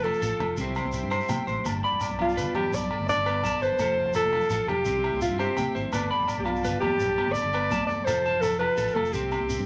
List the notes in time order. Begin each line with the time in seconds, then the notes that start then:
Already playing: F1 F3 A4 F5 G5 A5
0.03 F4 A4, low conga, low agogo
0.14 shekere
0.21 A1 F4 A4, shekere
0.39 F1 F4, high conga, low conga, low agogo
0.57 C2 C3 C4 E4 G4 E5 C6, shekere
0.61 C5
0.67 low conga
0.75 C5, low conga, low agogo, shekere
0.84 C2, high conga
0.92 G4, shekere
1.03 G2, low conga
1.11 C3 C5, low agogo, shekere
1.20 shekere
1.29 B2 C3 G5, high conga, low conga, low agogo, shekere
1.47 A1 A2 C5, shekere
1.57 low conga
1.64 G1 G2 A5 B5, muted clean electric guitar stroke, high conga, low conga, low agogo, shekere
1.84 D5 B5, low conga
1.92 E1, low conga
2.01 D5, low agogo, shekere
2.09 B1, high conga, low conga
2.19 B3 F4, low conga, low agogo
2.29 low conga, shekere
2.37 G1 B3 B4, shekere
2.54 E2 B3 G4, high conga, low conga, low agogo
2.71 B1 G2 D5, shekere
2.82 low conga
2.91 A4, low agogo
2.99 G1, high conga, low conga
3.09 A4 D5, shekere
3.16 G1, low conga
3.26 B3 B4, low agogo, shekere
3.35 low conga
3.43 B1 A4 A5, low conga, low agogo, shekere
3.53 low conga
3.61 G1 A4 B4 C5, shekere
3.69 low conga
3.79 F1 F3 A4 F5, high conga, low conga, low agogo, shekere
3.99 A4
4.05 F1, low conga
4.13 F4 A4, low agogo, shekere
4.23 F1, high conga, low conga
4.33 F4, low conga, low agogo
4.41 low conga, shekere
4.50 A1 F4 A4, shekere
4.67 F1 F4 G4, high conga, low conga, low agogo
4.84 C2 C3 E5 G5 C6, shekere
4.96 low conga
5.04 E4, low agogo
5.12 C2, high conga, low conga
5.21 E4 F4, shekere
5.31 G2, low conga
5.38 C4 G4 C5, low agogo, shekere
5.49 low conga
5.57 C3 G5, muted clean electric guitar stroke, high conga, low conga, low agogo, shekere
5.75 G#1 E4 C5, shekere
5.84 low conga
5.92 G1 G2 B3 A4 B4 D5 A5 B5, high conga, low conga, low agogo, shekere
6.11 D5 B5, low conga
6.20 E1, low conga
6.28 D5, low agogo, shekere
6.38 B1 G4, high conga, low conga
6.45 B3 F4, low conga, low agogo
6.56 shekere
6.64 G1 B3 B4, shekere
6.80 E2 B3 G4, high conga, low conga, low agogo
7.00 B1 G2, shekere
7.09 low conga
7.18 B3, low agogo
7.26 G1, high conga, low conga
7.32 A4 D5, shekere
7.43 G1, low conga
7.53 B3 B4, low agogo, shekere
7.61 low conga
7.71 B1 A5, muted clean electric guitar stroke, high conga, low conga, low agogo, shekere
7.80 low conga
7.87 E1 A4 D5, muted clean electric guitar stroke, shekere
7.97 low conga
8.05 F1 F3 F4 A4 C5 F5, high conga, low agogo, shekere
8.25 A4 A5, low conga, shekere
8.33 F1, low conga
8.41 F4 A4, low agogo, shekere
8.51 F1, shekere
8.59 F4 B4, low conga, low agogo
8.77 A1 A4, shekere
8.87 shekere
8.94 F1 F4 A4, high conga, low conga, low agogo
9.04 low conga, shekere
9.13 C2 C3 C4 G4 E5 C6, low conga, shekere
9.22 low conga
9.31 C4, low agogo, shekere
9.39 C2, high conga
9.49 C4, shekere
9.57 G2, low conga, shekere